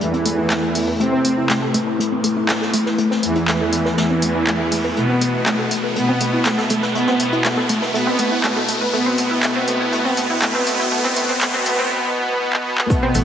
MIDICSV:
0, 0, Header, 1, 7, 480
1, 0, Start_track
1, 0, Key_signature, 0, "minor"
1, 0, Tempo, 495868
1, 969, Time_signature, 4, 2, 24, 8
1, 12816, End_track
2, 0, Start_track
2, 0, Title_t, "Ambient pad"
2, 0, Program_c, 0, 92
2, 0, Note_on_c, 0, 57, 74
2, 0, Note_on_c, 0, 64, 69
2, 0, Note_on_c, 0, 69, 85
2, 0, Note_on_c, 0, 71, 69
2, 4794, Note_off_c, 0, 69, 0
2, 4809, Note_on_c, 0, 76, 85
2, 11490, Note_off_c, 0, 57, 0
2, 11490, Note_off_c, 0, 64, 0
2, 11490, Note_off_c, 0, 71, 0
2, 11515, Note_off_c, 0, 76, 0
2, 12816, End_track
3, 0, Start_track
3, 0, Title_t, "Synth pluck"
3, 0, Program_c, 1, 84
3, 7, Note_on_c, 1, 57, 81
3, 83, Note_off_c, 1, 57, 0
3, 130, Note_on_c, 1, 60, 76
3, 202, Note_off_c, 1, 60, 0
3, 248, Note_on_c, 1, 57, 75
3, 361, Note_off_c, 1, 57, 0
3, 370, Note_on_c, 1, 64, 77
3, 414, Note_off_c, 1, 64, 0
3, 487, Note_on_c, 1, 57, 85
3, 533, Note_off_c, 1, 57, 0
3, 609, Note_on_c, 1, 69, 72
3, 682, Note_off_c, 1, 69, 0
3, 727, Note_on_c, 1, 57, 76
3, 773, Note_off_c, 1, 57, 0
3, 850, Note_on_c, 1, 71, 76
3, 922, Note_off_c, 1, 71, 0
3, 967, Note_on_c, 1, 57, 86
3, 1043, Note_off_c, 1, 57, 0
3, 1089, Note_on_c, 1, 60, 100
3, 1162, Note_off_c, 1, 60, 0
3, 1206, Note_on_c, 1, 57, 71
3, 1320, Note_off_c, 1, 57, 0
3, 1330, Note_on_c, 1, 64, 76
3, 1402, Note_off_c, 1, 64, 0
3, 1448, Note_on_c, 1, 57, 98
3, 1493, Note_off_c, 1, 57, 0
3, 1570, Note_on_c, 1, 69, 97
3, 1643, Note_off_c, 1, 69, 0
3, 1687, Note_on_c, 1, 57, 79
3, 1733, Note_off_c, 1, 57, 0
3, 1811, Note_on_c, 1, 71, 75
3, 1883, Note_off_c, 1, 71, 0
3, 1928, Note_on_c, 1, 57, 83
3, 2003, Note_off_c, 1, 57, 0
3, 2052, Note_on_c, 1, 60, 77
3, 2123, Note_off_c, 1, 60, 0
3, 2169, Note_on_c, 1, 57, 76
3, 2281, Note_off_c, 1, 57, 0
3, 2291, Note_on_c, 1, 64, 74
3, 2334, Note_off_c, 1, 64, 0
3, 2409, Note_on_c, 1, 57, 82
3, 2454, Note_off_c, 1, 57, 0
3, 2532, Note_on_c, 1, 69, 75
3, 2603, Note_off_c, 1, 69, 0
3, 2649, Note_on_c, 1, 57, 80
3, 2694, Note_off_c, 1, 57, 0
3, 2771, Note_on_c, 1, 71, 75
3, 2843, Note_off_c, 1, 71, 0
3, 2888, Note_on_c, 1, 57, 83
3, 2964, Note_off_c, 1, 57, 0
3, 3010, Note_on_c, 1, 60, 102
3, 3083, Note_off_c, 1, 60, 0
3, 3128, Note_on_c, 1, 57, 72
3, 3241, Note_off_c, 1, 57, 0
3, 3252, Note_on_c, 1, 64, 76
3, 3323, Note_off_c, 1, 64, 0
3, 3369, Note_on_c, 1, 57, 103
3, 3414, Note_off_c, 1, 57, 0
3, 3491, Note_on_c, 1, 69, 96
3, 3563, Note_off_c, 1, 69, 0
3, 3607, Note_on_c, 1, 57, 75
3, 3653, Note_off_c, 1, 57, 0
3, 3731, Note_on_c, 1, 71, 72
3, 3803, Note_off_c, 1, 71, 0
3, 3848, Note_on_c, 1, 57, 84
3, 3923, Note_off_c, 1, 57, 0
3, 3970, Note_on_c, 1, 60, 74
3, 4042, Note_off_c, 1, 60, 0
3, 4088, Note_on_c, 1, 57, 76
3, 4201, Note_off_c, 1, 57, 0
3, 4211, Note_on_c, 1, 64, 78
3, 4254, Note_off_c, 1, 64, 0
3, 4328, Note_on_c, 1, 57, 85
3, 4373, Note_off_c, 1, 57, 0
3, 4450, Note_on_c, 1, 69, 71
3, 4522, Note_off_c, 1, 69, 0
3, 4567, Note_on_c, 1, 57, 77
3, 4613, Note_off_c, 1, 57, 0
3, 4690, Note_on_c, 1, 71, 77
3, 4762, Note_off_c, 1, 71, 0
3, 4808, Note_on_c, 1, 57, 79
3, 4884, Note_off_c, 1, 57, 0
3, 4930, Note_on_c, 1, 60, 92
3, 5002, Note_off_c, 1, 60, 0
3, 5048, Note_on_c, 1, 57, 67
3, 5161, Note_off_c, 1, 57, 0
3, 5171, Note_on_c, 1, 64, 70
3, 5243, Note_off_c, 1, 64, 0
3, 5288, Note_on_c, 1, 57, 92
3, 5333, Note_off_c, 1, 57, 0
3, 5411, Note_on_c, 1, 69, 93
3, 5483, Note_off_c, 1, 69, 0
3, 5529, Note_on_c, 1, 57, 70
3, 5574, Note_off_c, 1, 57, 0
3, 5652, Note_on_c, 1, 71, 70
3, 5723, Note_off_c, 1, 71, 0
3, 5768, Note_on_c, 1, 57, 79
3, 5844, Note_off_c, 1, 57, 0
3, 5892, Note_on_c, 1, 60, 95
3, 5963, Note_off_c, 1, 60, 0
3, 6008, Note_on_c, 1, 57, 73
3, 6121, Note_off_c, 1, 57, 0
3, 6130, Note_on_c, 1, 64, 73
3, 6202, Note_off_c, 1, 64, 0
3, 6247, Note_on_c, 1, 57, 94
3, 6293, Note_off_c, 1, 57, 0
3, 6371, Note_on_c, 1, 69, 96
3, 6443, Note_off_c, 1, 69, 0
3, 6488, Note_on_c, 1, 57, 73
3, 6534, Note_off_c, 1, 57, 0
3, 6610, Note_on_c, 1, 71, 73
3, 6683, Note_off_c, 1, 71, 0
3, 6728, Note_on_c, 1, 57, 83
3, 6803, Note_off_c, 1, 57, 0
3, 6852, Note_on_c, 1, 60, 97
3, 6923, Note_off_c, 1, 60, 0
3, 6969, Note_on_c, 1, 57, 70
3, 7081, Note_off_c, 1, 57, 0
3, 7092, Note_on_c, 1, 64, 70
3, 7163, Note_off_c, 1, 64, 0
3, 7209, Note_on_c, 1, 57, 95
3, 7254, Note_off_c, 1, 57, 0
3, 7330, Note_on_c, 1, 69, 91
3, 7403, Note_off_c, 1, 69, 0
3, 7448, Note_on_c, 1, 57, 73
3, 7493, Note_off_c, 1, 57, 0
3, 7571, Note_on_c, 1, 71, 72
3, 7643, Note_off_c, 1, 71, 0
3, 7687, Note_on_c, 1, 57, 82
3, 7763, Note_off_c, 1, 57, 0
3, 7811, Note_on_c, 1, 60, 97
3, 7883, Note_off_c, 1, 60, 0
3, 7928, Note_on_c, 1, 57, 72
3, 8041, Note_off_c, 1, 57, 0
3, 8051, Note_on_c, 1, 64, 71
3, 8123, Note_off_c, 1, 64, 0
3, 8167, Note_on_c, 1, 57, 103
3, 8213, Note_off_c, 1, 57, 0
3, 8291, Note_on_c, 1, 69, 92
3, 8363, Note_off_c, 1, 69, 0
3, 8408, Note_on_c, 1, 57, 74
3, 8454, Note_off_c, 1, 57, 0
3, 8531, Note_on_c, 1, 71, 76
3, 8603, Note_off_c, 1, 71, 0
3, 8648, Note_on_c, 1, 57, 82
3, 8724, Note_off_c, 1, 57, 0
3, 8771, Note_on_c, 1, 60, 97
3, 8843, Note_off_c, 1, 60, 0
3, 8888, Note_on_c, 1, 57, 70
3, 9001, Note_off_c, 1, 57, 0
3, 9011, Note_on_c, 1, 64, 74
3, 9083, Note_off_c, 1, 64, 0
3, 9127, Note_on_c, 1, 57, 86
3, 9203, Note_off_c, 1, 57, 0
3, 9250, Note_on_c, 1, 60, 98
3, 9323, Note_off_c, 1, 60, 0
3, 9367, Note_on_c, 1, 57, 80
3, 9481, Note_off_c, 1, 57, 0
3, 9491, Note_on_c, 1, 64, 78
3, 9563, Note_off_c, 1, 64, 0
3, 9608, Note_on_c, 1, 57, 85
3, 9684, Note_off_c, 1, 57, 0
3, 9732, Note_on_c, 1, 60, 97
3, 9803, Note_off_c, 1, 60, 0
3, 9848, Note_on_c, 1, 57, 73
3, 9961, Note_off_c, 1, 57, 0
3, 9971, Note_on_c, 1, 64, 81
3, 10043, Note_off_c, 1, 64, 0
3, 10088, Note_on_c, 1, 57, 85
3, 10163, Note_off_c, 1, 57, 0
3, 10210, Note_on_c, 1, 60, 100
3, 10282, Note_off_c, 1, 60, 0
3, 10328, Note_on_c, 1, 57, 82
3, 10441, Note_off_c, 1, 57, 0
3, 10451, Note_on_c, 1, 64, 77
3, 10523, Note_off_c, 1, 64, 0
3, 10568, Note_on_c, 1, 57, 88
3, 10643, Note_off_c, 1, 57, 0
3, 10691, Note_on_c, 1, 60, 109
3, 10763, Note_off_c, 1, 60, 0
3, 10808, Note_on_c, 1, 57, 81
3, 10884, Note_off_c, 1, 57, 0
3, 10930, Note_on_c, 1, 60, 102
3, 11002, Note_off_c, 1, 60, 0
3, 11049, Note_on_c, 1, 57, 88
3, 11124, Note_off_c, 1, 57, 0
3, 11172, Note_on_c, 1, 60, 101
3, 11243, Note_off_c, 1, 60, 0
3, 11288, Note_on_c, 1, 57, 83
3, 11363, Note_off_c, 1, 57, 0
3, 11411, Note_on_c, 1, 60, 99
3, 11483, Note_off_c, 1, 60, 0
3, 12489, Note_on_c, 1, 57, 85
3, 12489, Note_on_c, 1, 69, 61
3, 12564, Note_off_c, 1, 57, 0
3, 12564, Note_off_c, 1, 69, 0
3, 12612, Note_on_c, 1, 60, 104
3, 12612, Note_on_c, 1, 72, 69
3, 12683, Note_off_c, 1, 60, 0
3, 12683, Note_off_c, 1, 72, 0
3, 12729, Note_on_c, 1, 57, 76
3, 12729, Note_on_c, 1, 69, 53
3, 12816, Note_off_c, 1, 57, 0
3, 12816, Note_off_c, 1, 69, 0
3, 12816, End_track
4, 0, Start_track
4, 0, Title_t, "Supersaw synth"
4, 0, Program_c, 2, 81
4, 8, Note_on_c, 2, 40, 82
4, 8, Note_on_c, 2, 52, 103
4, 875, Note_off_c, 2, 40, 0
4, 875, Note_off_c, 2, 52, 0
4, 967, Note_on_c, 2, 48, 85
4, 967, Note_on_c, 2, 60, 106
4, 1594, Note_off_c, 2, 48, 0
4, 1594, Note_off_c, 2, 60, 0
4, 3128, Note_on_c, 2, 40, 78
4, 3128, Note_on_c, 2, 52, 94
4, 3755, Note_off_c, 2, 40, 0
4, 3755, Note_off_c, 2, 52, 0
4, 3848, Note_on_c, 2, 40, 83
4, 3848, Note_on_c, 2, 52, 99
4, 4715, Note_off_c, 2, 40, 0
4, 4715, Note_off_c, 2, 52, 0
4, 4808, Note_on_c, 2, 47, 75
4, 4809, Note_on_c, 2, 59, 97
4, 5435, Note_off_c, 2, 47, 0
4, 5435, Note_off_c, 2, 59, 0
4, 5768, Note_on_c, 2, 47, 77
4, 5768, Note_on_c, 2, 59, 100
4, 6395, Note_off_c, 2, 47, 0
4, 6395, Note_off_c, 2, 59, 0
4, 6728, Note_on_c, 2, 47, 79
4, 6729, Note_on_c, 2, 59, 103
4, 7355, Note_off_c, 2, 47, 0
4, 7355, Note_off_c, 2, 59, 0
4, 7686, Note_on_c, 2, 47, 81
4, 7686, Note_on_c, 2, 59, 102
4, 8314, Note_off_c, 2, 47, 0
4, 8314, Note_off_c, 2, 59, 0
4, 8648, Note_on_c, 2, 47, 83
4, 8648, Note_on_c, 2, 59, 104
4, 9110, Note_off_c, 2, 47, 0
4, 9110, Note_off_c, 2, 59, 0
4, 9127, Note_on_c, 2, 47, 83
4, 9128, Note_on_c, 2, 59, 105
4, 9589, Note_off_c, 2, 47, 0
4, 9590, Note_off_c, 2, 59, 0
4, 9605, Note_on_c, 2, 47, 83
4, 9605, Note_on_c, 2, 59, 102
4, 10068, Note_off_c, 2, 47, 0
4, 10068, Note_off_c, 2, 59, 0
4, 10087, Note_on_c, 2, 47, 79
4, 10087, Note_on_c, 2, 59, 107
4, 10549, Note_off_c, 2, 47, 0
4, 10549, Note_off_c, 2, 59, 0
4, 10566, Note_on_c, 2, 47, 83
4, 10566, Note_on_c, 2, 59, 104
4, 10789, Note_off_c, 2, 47, 0
4, 10789, Note_off_c, 2, 59, 0
4, 10806, Note_on_c, 2, 47, 80
4, 10806, Note_on_c, 2, 59, 99
4, 11029, Note_off_c, 2, 47, 0
4, 11029, Note_off_c, 2, 59, 0
4, 11046, Note_on_c, 2, 47, 82
4, 11047, Note_on_c, 2, 59, 107
4, 11269, Note_off_c, 2, 47, 0
4, 11269, Note_off_c, 2, 59, 0
4, 11287, Note_on_c, 2, 47, 83
4, 11288, Note_on_c, 2, 59, 109
4, 11510, Note_off_c, 2, 47, 0
4, 11510, Note_off_c, 2, 59, 0
4, 11527, Note_on_c, 2, 47, 80
4, 11527, Note_on_c, 2, 59, 103
4, 11749, Note_off_c, 2, 47, 0
4, 11749, Note_off_c, 2, 59, 0
4, 11766, Note_on_c, 2, 47, 80
4, 11766, Note_on_c, 2, 59, 105
4, 11989, Note_off_c, 2, 47, 0
4, 11989, Note_off_c, 2, 59, 0
4, 12006, Note_on_c, 2, 47, 78
4, 12007, Note_on_c, 2, 59, 101
4, 12229, Note_off_c, 2, 47, 0
4, 12229, Note_off_c, 2, 59, 0
4, 12245, Note_on_c, 2, 47, 85
4, 12246, Note_on_c, 2, 59, 104
4, 12468, Note_off_c, 2, 47, 0
4, 12469, Note_off_c, 2, 59, 0
4, 12487, Note_on_c, 2, 47, 86
4, 12487, Note_on_c, 2, 59, 107
4, 12816, Note_off_c, 2, 47, 0
4, 12816, Note_off_c, 2, 59, 0
4, 12816, End_track
5, 0, Start_track
5, 0, Title_t, "Analog synth bass"
5, 0, Program_c, 3, 38
5, 12729, Note_on_c, 3, 33, 102
5, 12816, Note_off_c, 3, 33, 0
5, 12816, End_track
6, 0, Start_track
6, 0, Title_t, "Riser"
6, 0, Program_c, 4, 103
6, 0, Note_on_c, 4, 60, 76
6, 11529, Note_off_c, 4, 60, 0
6, 12816, End_track
7, 0, Start_track
7, 0, Title_t, "Drums"
7, 9, Note_on_c, 9, 42, 81
7, 105, Note_off_c, 9, 42, 0
7, 131, Note_on_c, 9, 42, 45
7, 228, Note_off_c, 9, 42, 0
7, 247, Note_on_c, 9, 46, 107
7, 252, Note_on_c, 9, 42, 64
7, 344, Note_off_c, 9, 46, 0
7, 348, Note_off_c, 9, 42, 0
7, 482, Note_on_c, 9, 38, 104
7, 483, Note_on_c, 9, 42, 77
7, 487, Note_on_c, 9, 39, 118
7, 579, Note_off_c, 9, 38, 0
7, 579, Note_off_c, 9, 42, 0
7, 584, Note_off_c, 9, 39, 0
7, 608, Note_on_c, 9, 42, 45
7, 704, Note_off_c, 9, 42, 0
7, 722, Note_on_c, 9, 46, 84
7, 728, Note_off_c, 9, 46, 0
7, 728, Note_on_c, 9, 46, 109
7, 825, Note_off_c, 9, 46, 0
7, 973, Note_on_c, 9, 42, 86
7, 1070, Note_off_c, 9, 42, 0
7, 1208, Note_on_c, 9, 46, 115
7, 1212, Note_on_c, 9, 42, 58
7, 1305, Note_off_c, 9, 46, 0
7, 1308, Note_off_c, 9, 42, 0
7, 1447, Note_on_c, 9, 38, 114
7, 1448, Note_on_c, 9, 39, 120
7, 1449, Note_on_c, 9, 42, 90
7, 1543, Note_off_c, 9, 38, 0
7, 1545, Note_off_c, 9, 39, 0
7, 1546, Note_off_c, 9, 42, 0
7, 1685, Note_on_c, 9, 42, 73
7, 1688, Note_on_c, 9, 46, 109
7, 1782, Note_off_c, 9, 42, 0
7, 1785, Note_off_c, 9, 46, 0
7, 1937, Note_on_c, 9, 42, 84
7, 2033, Note_off_c, 9, 42, 0
7, 2168, Note_on_c, 9, 46, 107
7, 2171, Note_on_c, 9, 42, 61
7, 2265, Note_off_c, 9, 46, 0
7, 2268, Note_off_c, 9, 42, 0
7, 2408, Note_on_c, 9, 39, 121
7, 2408, Note_on_c, 9, 42, 88
7, 2413, Note_on_c, 9, 38, 110
7, 2505, Note_off_c, 9, 39, 0
7, 2505, Note_off_c, 9, 42, 0
7, 2510, Note_off_c, 9, 38, 0
7, 2536, Note_on_c, 9, 38, 49
7, 2633, Note_off_c, 9, 38, 0
7, 2644, Note_on_c, 9, 42, 65
7, 2648, Note_on_c, 9, 46, 109
7, 2741, Note_off_c, 9, 42, 0
7, 2745, Note_off_c, 9, 46, 0
7, 2776, Note_on_c, 9, 38, 45
7, 2873, Note_off_c, 9, 38, 0
7, 2886, Note_on_c, 9, 42, 90
7, 2983, Note_off_c, 9, 42, 0
7, 3015, Note_on_c, 9, 38, 44
7, 3112, Note_off_c, 9, 38, 0
7, 3128, Note_on_c, 9, 46, 110
7, 3133, Note_on_c, 9, 42, 65
7, 3225, Note_off_c, 9, 46, 0
7, 3230, Note_off_c, 9, 42, 0
7, 3246, Note_on_c, 9, 42, 44
7, 3343, Note_off_c, 9, 42, 0
7, 3368, Note_on_c, 9, 39, 113
7, 3369, Note_on_c, 9, 42, 82
7, 3370, Note_on_c, 9, 38, 97
7, 3465, Note_off_c, 9, 39, 0
7, 3466, Note_off_c, 9, 42, 0
7, 3467, Note_off_c, 9, 38, 0
7, 3607, Note_on_c, 9, 46, 110
7, 3609, Note_on_c, 9, 42, 67
7, 3704, Note_off_c, 9, 46, 0
7, 3706, Note_off_c, 9, 42, 0
7, 3736, Note_on_c, 9, 38, 40
7, 3833, Note_off_c, 9, 38, 0
7, 3851, Note_on_c, 9, 38, 91
7, 3851, Note_on_c, 9, 42, 69
7, 3948, Note_off_c, 9, 38, 0
7, 3948, Note_off_c, 9, 42, 0
7, 4081, Note_on_c, 9, 42, 59
7, 4088, Note_on_c, 9, 46, 108
7, 4178, Note_off_c, 9, 42, 0
7, 4185, Note_off_c, 9, 46, 0
7, 4328, Note_on_c, 9, 39, 116
7, 4337, Note_on_c, 9, 42, 73
7, 4424, Note_off_c, 9, 39, 0
7, 4434, Note_off_c, 9, 42, 0
7, 4568, Note_on_c, 9, 46, 102
7, 4569, Note_off_c, 9, 46, 0
7, 4569, Note_on_c, 9, 46, 85
7, 4666, Note_off_c, 9, 46, 0
7, 4809, Note_on_c, 9, 42, 84
7, 4906, Note_off_c, 9, 42, 0
7, 5044, Note_on_c, 9, 42, 70
7, 5048, Note_on_c, 9, 46, 108
7, 5141, Note_off_c, 9, 42, 0
7, 5145, Note_off_c, 9, 46, 0
7, 5288, Note_on_c, 9, 38, 120
7, 5288, Note_on_c, 9, 39, 111
7, 5292, Note_on_c, 9, 42, 76
7, 5385, Note_off_c, 9, 38, 0
7, 5385, Note_off_c, 9, 39, 0
7, 5389, Note_off_c, 9, 42, 0
7, 5528, Note_on_c, 9, 42, 72
7, 5529, Note_on_c, 9, 46, 105
7, 5625, Note_off_c, 9, 42, 0
7, 5626, Note_off_c, 9, 46, 0
7, 5769, Note_on_c, 9, 42, 83
7, 5866, Note_off_c, 9, 42, 0
7, 6007, Note_on_c, 9, 42, 70
7, 6008, Note_on_c, 9, 46, 104
7, 6104, Note_off_c, 9, 42, 0
7, 6105, Note_off_c, 9, 46, 0
7, 6240, Note_on_c, 9, 42, 88
7, 6244, Note_on_c, 9, 38, 110
7, 6248, Note_on_c, 9, 39, 107
7, 6336, Note_off_c, 9, 42, 0
7, 6340, Note_off_c, 9, 38, 0
7, 6345, Note_off_c, 9, 39, 0
7, 6372, Note_on_c, 9, 38, 52
7, 6469, Note_off_c, 9, 38, 0
7, 6479, Note_on_c, 9, 42, 68
7, 6488, Note_on_c, 9, 46, 105
7, 6576, Note_off_c, 9, 42, 0
7, 6585, Note_off_c, 9, 46, 0
7, 6609, Note_on_c, 9, 38, 50
7, 6706, Note_off_c, 9, 38, 0
7, 6728, Note_on_c, 9, 42, 80
7, 6825, Note_off_c, 9, 42, 0
7, 6847, Note_on_c, 9, 38, 43
7, 6944, Note_off_c, 9, 38, 0
7, 6964, Note_on_c, 9, 42, 63
7, 6968, Note_on_c, 9, 46, 107
7, 7061, Note_off_c, 9, 42, 0
7, 7064, Note_off_c, 9, 46, 0
7, 7090, Note_on_c, 9, 42, 46
7, 7187, Note_off_c, 9, 42, 0
7, 7206, Note_on_c, 9, 38, 112
7, 7208, Note_on_c, 9, 39, 111
7, 7214, Note_on_c, 9, 42, 94
7, 7303, Note_off_c, 9, 38, 0
7, 7305, Note_off_c, 9, 39, 0
7, 7311, Note_off_c, 9, 42, 0
7, 7447, Note_on_c, 9, 46, 104
7, 7449, Note_on_c, 9, 42, 64
7, 7544, Note_off_c, 9, 46, 0
7, 7546, Note_off_c, 9, 42, 0
7, 7570, Note_on_c, 9, 38, 39
7, 7667, Note_off_c, 9, 38, 0
7, 7695, Note_on_c, 9, 42, 96
7, 7792, Note_off_c, 9, 42, 0
7, 7819, Note_on_c, 9, 42, 42
7, 7916, Note_off_c, 9, 42, 0
7, 7921, Note_on_c, 9, 42, 74
7, 7928, Note_on_c, 9, 46, 101
7, 8018, Note_off_c, 9, 42, 0
7, 8024, Note_off_c, 9, 46, 0
7, 8164, Note_on_c, 9, 42, 88
7, 8166, Note_on_c, 9, 38, 127
7, 8167, Note_on_c, 9, 39, 117
7, 8261, Note_off_c, 9, 42, 0
7, 8263, Note_off_c, 9, 38, 0
7, 8264, Note_off_c, 9, 39, 0
7, 8295, Note_on_c, 9, 42, 41
7, 8392, Note_off_c, 9, 42, 0
7, 8405, Note_on_c, 9, 46, 84
7, 8407, Note_off_c, 9, 46, 0
7, 8407, Note_on_c, 9, 46, 104
7, 8504, Note_off_c, 9, 46, 0
7, 8648, Note_on_c, 9, 42, 77
7, 8745, Note_off_c, 9, 42, 0
7, 8882, Note_on_c, 9, 42, 70
7, 8888, Note_on_c, 9, 46, 101
7, 8979, Note_off_c, 9, 42, 0
7, 8985, Note_off_c, 9, 46, 0
7, 9128, Note_on_c, 9, 39, 116
7, 9129, Note_on_c, 9, 38, 114
7, 9130, Note_on_c, 9, 42, 82
7, 9224, Note_off_c, 9, 39, 0
7, 9226, Note_off_c, 9, 38, 0
7, 9227, Note_off_c, 9, 42, 0
7, 9368, Note_on_c, 9, 42, 67
7, 9368, Note_on_c, 9, 46, 96
7, 9464, Note_off_c, 9, 46, 0
7, 9465, Note_off_c, 9, 42, 0
7, 9607, Note_on_c, 9, 42, 87
7, 9704, Note_off_c, 9, 42, 0
7, 9841, Note_on_c, 9, 42, 75
7, 9847, Note_on_c, 9, 46, 100
7, 9938, Note_off_c, 9, 42, 0
7, 9944, Note_off_c, 9, 46, 0
7, 10087, Note_on_c, 9, 39, 115
7, 10088, Note_on_c, 9, 42, 93
7, 10089, Note_on_c, 9, 38, 110
7, 10184, Note_off_c, 9, 39, 0
7, 10185, Note_off_c, 9, 42, 0
7, 10186, Note_off_c, 9, 38, 0
7, 10206, Note_on_c, 9, 38, 47
7, 10303, Note_off_c, 9, 38, 0
7, 10327, Note_on_c, 9, 46, 100
7, 10334, Note_on_c, 9, 42, 69
7, 10424, Note_off_c, 9, 46, 0
7, 10431, Note_off_c, 9, 42, 0
7, 10450, Note_on_c, 9, 38, 47
7, 10547, Note_off_c, 9, 38, 0
7, 10564, Note_on_c, 9, 42, 84
7, 10660, Note_off_c, 9, 42, 0
7, 10686, Note_on_c, 9, 38, 44
7, 10783, Note_off_c, 9, 38, 0
7, 10807, Note_on_c, 9, 46, 110
7, 10808, Note_on_c, 9, 42, 61
7, 10904, Note_off_c, 9, 42, 0
7, 10904, Note_off_c, 9, 46, 0
7, 10928, Note_on_c, 9, 42, 45
7, 11024, Note_off_c, 9, 42, 0
7, 11045, Note_on_c, 9, 42, 89
7, 11047, Note_on_c, 9, 38, 120
7, 11047, Note_on_c, 9, 39, 124
7, 11142, Note_off_c, 9, 42, 0
7, 11143, Note_off_c, 9, 38, 0
7, 11144, Note_off_c, 9, 39, 0
7, 11281, Note_on_c, 9, 42, 68
7, 11287, Note_on_c, 9, 46, 98
7, 11378, Note_off_c, 9, 42, 0
7, 11384, Note_off_c, 9, 46, 0
7, 11411, Note_on_c, 9, 38, 37
7, 11508, Note_off_c, 9, 38, 0
7, 12131, Note_on_c, 9, 39, 78
7, 12228, Note_off_c, 9, 39, 0
7, 12371, Note_on_c, 9, 39, 99
7, 12468, Note_off_c, 9, 39, 0
7, 12488, Note_on_c, 9, 36, 122
7, 12491, Note_on_c, 9, 82, 38
7, 12492, Note_on_c, 9, 42, 77
7, 12585, Note_off_c, 9, 36, 0
7, 12588, Note_off_c, 9, 82, 0
7, 12589, Note_off_c, 9, 42, 0
7, 12726, Note_on_c, 9, 82, 89
7, 12729, Note_on_c, 9, 46, 106
7, 12732, Note_on_c, 9, 42, 69
7, 12816, Note_off_c, 9, 42, 0
7, 12816, Note_off_c, 9, 46, 0
7, 12816, Note_off_c, 9, 82, 0
7, 12816, End_track
0, 0, End_of_file